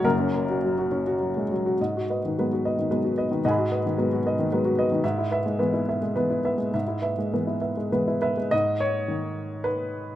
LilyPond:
<<
  \new Staff \with { instrumentName = "Grand piano" } { \time 3/4 \key gis \minor \tempo 4 = 106 << { ais'2~ ais'8 r8 | r2. | <fis'' gis'' b''>2. | r2. |
r2 r8 b'8 | dis''8 cis''4. b'4 | } \\ { r2. | dis''16 fis'16 <b' dis''>16 dis16 b'16 fis'16 <b' dis''>16 dis16 b'16 fis'16 <b' dis''>16 dis16 | dis''16 fis'16 <b' dis''>16 dis16 b'16 fis'16 <b' dis''>16 dis16 b'16 fis'16 <b' dis''>16 dis16 | e''16 e'16 <b' e''>16 gis16 b'16 e'16 <b' e''>16 gis16 b'16 e'16 <b' e''>16 gis16 |
e''16 e'16 <b' e''>16 gis16 b'16 e'16 <b' e''>16 gis16 b'16 e'16 e''16 gis16 | r2. | } >> }
  \new Staff \with { instrumentName = "Grand piano" } { \clef bass \time 3/4 \key gis \minor <fis,, fis, fis'>16 cis'16 ais16 fis'16 fis16 fis'16 cis'16 fis'16 fis16 gis16 fis16 fis'16 | gis,4 <fis gis b>4 <fis gis b>4 | gis,4 <fis gis b>4 <fis gis b>4 | gis,4 <e gis b>4 <e gis b>4 |
gis,4 <e gis b>4 <e gis b>4 | gis,4 dis2 | }
>>